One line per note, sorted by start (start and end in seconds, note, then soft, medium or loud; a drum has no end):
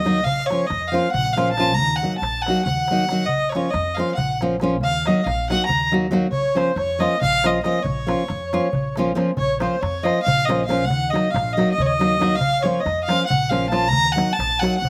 0.00 0.26 D#2 medium
0.00 0.23 D#5 medium
0.00 0.25 D#5 medium
0.05 0.18 F#3 medium
0.05 0.19 A#3 medium
0.05 0.19 D#4 medium
0.05 0.19 F#4 medium
0.05 darbuka tek medium
0.22 0.52 A#1 medium
0.22 0.47 F5 medium
0.22 0.47 F5 loud
0.26 darbuka dum medium
0.45 0.68 C#5 medium
0.50 0.64 F3 medium
0.50 0.64 A#3 soft
0.50 0.64 C#4 soft
0.50 0.65 F4 medium
0.50 darbuka tek medium
0.65 0.91 D#5 medium
0.65 0.89 D#5 medium
0.70 0.97 F2 medium
0.70 darbuka tek medium
0.82 darbuka tek soft
0.87 1.11 F5 medium
0.87 1.12 F5 medium
0.92 1.06 F3 medium
0.92 1.07 A#3 medium
0.92 1.07 C#4 soft
0.92 1.08 F4 medium
1.10 1.78 A#1 medium
1.10 1.33 F#5 medium
1.10 1.34 F#5 loud
1.14 darbuka dum medium
1.33 1.50 F3 medium
1.33 1.51 F5 medium
1.33 1.55 F5 medium
1.37 1.51 A#3 medium
1.37 1.50 C#4 medium
1.37 1.51 F4 medium
1.37 darbuka tek medium
1.51 1.76 A5 loud
1.51 1.73 A5 medium
1.57 1.71 F3 medium
1.57 1.72 A#3 medium
1.57 1.72 C#4 medium
1.57 1.72 F4 medium
1.57 darbuka tek medium
1.74 1.99 A#5 medium
1.74 1.97 A#5 loud
1.78 2.04 D#2 medium
1.78 darbuka dum medium
1.91 darbuka tek soft
1.96 2.17 F#5 medium
1.96 2.20 F#5 medium
2.03 2.16 F#3 soft
2.03 2.16 A#3 soft
2.03 2.16 D#4 soft
2.03 2.16 F#4 medium
2.14 darbuka tek soft
2.18 2.44 A5 medium
2.18 2.43 A5 medium
2.22 2.49 A#1 medium
2.22 darbuka tek medium
2.42 2.64 F#5 loud
2.42 2.63 F#5 medium
2.46 2.61 F#3 medium
2.46 2.60 A#3 medium
2.46 2.60 D#4 medium
2.46 2.61 F#4 medium
2.46 darbuka tek medium
2.64 3.29 D#2 medium
2.64 3.24 F#5 medium
2.64 3.27 F#5 loud
2.64 darbuka dum medium
2.78 darbuka tek soft
2.88 3.03 F#3 medium
2.88 3.03 A#3 medium
2.88 darbuka tek medium
2.92 3.04 D#4 medium
2.92 3.04 F#4 medium
3.09 3.23 F#3 medium
3.09 3.24 A#3 medium
3.09 3.24 D#4 soft
3.09 darbuka tek medium
3.13 3.24 F#4 medium
3.19 darbuka tek soft
3.26 3.56 A#1 medium
3.26 3.51 D#5 medium
3.26 3.52 D#5 medium
3.26 darbuka dum medium
3.49 3.72 C#5 medium
3.49 3.73 C#5 medium
3.49 darbuka tek medium
3.55 3.68 F3 medium
3.55 3.68 A#3 medium
3.55 3.68 C#4 soft
3.55 3.68 F4 medium
3.70 4.00 F2 loud
3.70 3.96 D#5 medium
3.70 darbuka tek medium
3.85 darbuka tek soft
3.95 4.12 F3 medium
3.95 4.11 A#3 medium
3.95 4.14 F5 medium
3.95 4.18 F5 medium
3.95 darbuka tek medium
3.99 4.12 C#4 medium
3.99 4.12 F4 medium
4.15 4.83 A#1 medium
4.15 4.37 F#5 medium
4.15 4.38 F#5 medium
4.15 darbuka dum medium
4.41 4.55 F3 medium
4.41 4.55 A#3 medium
4.41 4.55 C#4 medium
4.41 4.55 F4 medium
4.41 darbuka tek medium
4.60 4.75 F3 medium
4.60 4.75 A#3 medium
4.60 4.75 C#4 medium
4.60 4.76 F4 medium
4.60 darbuka tek medium
4.81 5.09 D#2 loud
4.81 5.04 F5 medium
4.81 5.08 F5 loud
4.81 darbuka dum medium
5.06 5.20 F#3 medium
5.06 5.20 A#3 soft
5.06 5.21 D#4 soft
5.06 5.21 F#4 medium
5.06 5.26 D#5 medium
5.06 darbuka tek medium
5.24 5.53 A#1 medium
5.24 5.48 F5 medium
5.24 5.49 F5 medium
5.24 darbuka tek medium
5.39 darbuka tek soft
5.50 5.63 F#3 medium
5.50 5.64 A#3 medium
5.50 5.64 D#4 medium
5.50 5.65 F#4 medium
5.50 5.65 F#5 loud
5.50 5.69 F#5 medium
5.50 darbuka tek medium
5.66 5.88 A#5 loud
5.66 darbuka dum medium
5.70 6.33 D#2 medium
5.70 5.91 A#5 medium
5.91 6.06 F#3 medium
5.91 6.06 A#3 medium
5.91 6.06 D#4 medium
5.91 6.07 F#4 medium
5.91 darbuka tek medium
6.11 6.25 F#3 medium
6.11 6.26 A#3 medium
6.11 6.26 D#4 medium
6.11 6.27 F#4 medium
6.11 darbuka tek medium
6.23 darbuka tek soft
6.31 6.60 A#1 medium
6.31 6.58 C#5 medium
6.31 darbuka dum medium
6.36 6.56 C#5 medium
6.55 6.70 F3 medium
6.55 6.70 A#3 soft
6.55 6.70 C#4 medium
6.55 6.70 F4 soft
6.55 6.77 C5 medium
6.55 darbuka tek medium
6.61 6.79 C5 medium
6.76 7.03 F2 medium
6.76 7.01 C#5 medium
6.76 darbuka tek medium
6.89 darbuka tek soft
6.99 7.14 F3 medium
6.99 7.15 A#3 medium
6.99 7.14 C#4 medium
6.99 7.15 F4 medium
6.99 7.21 D#5 medium
6.99 7.22 D#5 medium
6.99 darbuka tek medium
7.21 7.60 A#1 medium
7.21 7.47 F5 loud
7.21 7.44 F5 loud
7.21 darbuka dum medium
7.44 7.58 F3 medium
7.44 7.58 A#3 medium
7.44 7.58 C#4 medium
7.44 7.58 F4 medium
7.44 7.62 D#5 medium
7.44 7.64 D#5 medium
7.44 darbuka tek medium
7.63 7.78 F3 medium
7.63 7.78 A#3 medium
7.63 7.79 C#4 medium
7.63 7.79 F4 medium
7.63 7.84 D#5 medium
7.63 darbuka tek medium
7.75 darbuka tek soft
7.83 8.12 A#1 medium
7.83 8.95 C#5 medium
7.83 8.96 C#5 medium
7.83 darbuka dum medium
8.06 8.22 F3 medium
8.06 8.22 A#3 medium
8.06 8.22 C#4 soft
8.06 8.22 F4 medium
8.06 darbuka tek medium
8.19 darbuka tek soft
8.28 8.56 F2 loud
8.28 darbuka tek medium
8.53 8.67 F3 medium
8.53 8.67 A#3 medium
8.53 8.68 C#4 medium
8.53 8.67 F4 medium
8.53 darbuka tek medium
8.73 9.12 A#1 medium
8.73 darbuka dum medium
8.96 9.10 F3 medium
8.96 9.11 A#3 medium
8.96 9.11 C#4 medium
8.96 9.11 F4 medium
8.96 darbuka tek medium
9.15 9.30 F3 medium
9.15 9.30 A#3 medium
9.15 9.30 C#4 medium
9.15 9.30 F4 medium
9.15 darbuka tek medium
9.37 9.64 A#1 medium
9.37 9.59 C#5 medium
9.37 darbuka dum medium
9.58 9.74 F3 medium
9.58 9.75 A#3 medium
9.58 9.75 C#4 medium
9.58 9.75 F4 medium
9.58 9.79 C5 medium
9.58 9.83 C5 medium
9.58 darbuka tek medium
9.80 10.09 F2 loud
9.80 10.04 C#5 medium
9.80 10.05 C#5 medium
9.80 darbuka tek medium
9.94 darbuka tek soft
10.03 10.18 F3 medium
10.03 10.18 A#3 medium
10.03 10.19 C#4 soft
10.03 10.19 F4 medium
10.03 10.22 D#5 medium
10.03 10.25 D#5 medium
10.03 darbuka tek medium
10.23 10.47 F5 loud
10.23 10.45 F5 medium
10.27 10.89 A#1 medium
10.27 darbuka dum loud
10.45 10.62 F3 medium
10.45 10.62 A#3 medium
10.45 10.62 C#4 medium
10.45 10.65 D#5 medium
10.45 10.67 D#5 medium
10.49 10.63 F4 medium
10.49 darbuka tek medium
10.65 10.83 F3 medium
10.65 10.86 F5 medium
10.70 10.83 A#3 medium
10.70 10.83 C#4 medium
10.70 10.84 F4 medium
10.70 darbuka tek medium
10.80 darbuka tek soft
10.85 11.11 F#5 loud
10.85 11.11 F#5 medium
10.89 11.16 D#2 medium
10.89 darbuka dum medium
11.09 11.27 F#3 medium
11.09 11.32 D#5 medium
11.13 11.27 A#3 soft
11.13 11.27 D#4 medium
11.13 11.27 F#4 medium
11.13 darbuka tek medium
11.30 11.61 A#1 loud
11.30 11.56 F5 medium
11.30 11.54 F5 medium
11.36 darbuka tek medium
11.48 darbuka tek soft
11.53 11.71 D#5 medium
11.53 11.72 D#5 medium
11.57 11.71 F#3 medium
11.57 11.71 A#3 medium
11.57 11.71 D#4 medium
11.57 11.72 F#4 medium
11.57 darbuka tek medium
11.72 11.83 D#5 medium
11.72 11.82 D#5 medium
11.78 12.42 D#2 medium
11.78 11.88 C#5 medium
11.78 darbuka dum medium
11.85 11.93 C#5 medium
11.85 12.37 D#5 loud
11.85 12.39 D#5 medium
11.99 12.14 F#3 medium
11.99 12.14 A#3 medium
11.99 12.15 D#4 medium
11.99 12.14 F#4 medium
11.99 darbuka tek medium
12.19 12.34 F#3 medium
12.19 12.34 A#3 medium
12.19 12.35 D#4 medium
12.19 12.35 F#4 medium
12.19 darbuka tek medium
12.31 12.64 F5 loud
12.31 darbuka tek soft
12.37 12.63 F5 loud
12.37 darbuka dum medium
12.41 12.68 A#1 medium
12.61 12.78 F3 medium
12.61 12.79 A#3 medium
12.61 12.84 C#5 medium
12.61 12.82 C#5 medium
12.65 12.79 C#4 soft
12.65 12.79 F4 medium
12.80 13.03 D#5 medium
12.80 13.08 D#5 medium
12.86 13.12 F2 medium
12.86 darbuka tek medium
12.98 darbuka tek soft
13.03 13.25 F5 loud
13.03 13.27 F5 medium
13.08 13.23 F3 medium
13.08 13.24 A#3 soft
13.08 13.24 C#4 medium
13.08 13.24 F4 medium
13.08 darbuka tek medium
13.26 13.51 F#5 medium
13.26 13.50 F#5 medium
13.30 13.94 A#1 medium
13.30 darbuka dum medium
13.49 13.65 F3 medium
13.49 13.65 A#3 medium
13.49 13.66 C#4 medium
13.49 13.66 F4 medium
13.49 13.69 F5 medium
13.49 13.72 F5 medium
13.49 darbuka tek medium
13.69 13.85 F3 medium
13.69 13.86 A#3 medium
13.69 13.86 C#4 medium
13.69 13.87 F4 medium
13.69 13.89 A5 loud
13.69 13.90 A5 medium
13.69 darbuka tek medium
13.83 darbuka tek soft
13.88 14.13 A#5 loud
13.88 14.16 A#5 medium
13.93 14.21 D#2 medium
13.93 darbuka dum medium
14.05 darbuka tek soft
14.12 14.30 F#3 medium
14.12 14.34 F#5 loud
14.12 14.37 F#5 medium
14.16 14.30 A#3 medium
14.16 14.31 D#4 medium
14.16 14.31 F#4 medium
14.16 darbuka tek medium
14.29 14.61 A5 loud
14.29 darbuka tek soft
14.35 14.65 A#1 medium
14.35 14.60 A5 medium
14.40 darbuka tek medium
14.59 14.76 F#3 medium
14.59 14.76 A#3 medium
14.59 14.76 D#4 medium
14.59 14.76 F#4 medium
14.59 14.79 F#5 medium
14.59 14.77 F#5 loud
14.64 darbuka tek medium
14.75 14.89 F#5 loud
14.75 darbuka tek soft
14.81 14.89 D#2 medium
14.81 14.89 F#5 loud
14.85 darbuka dum medium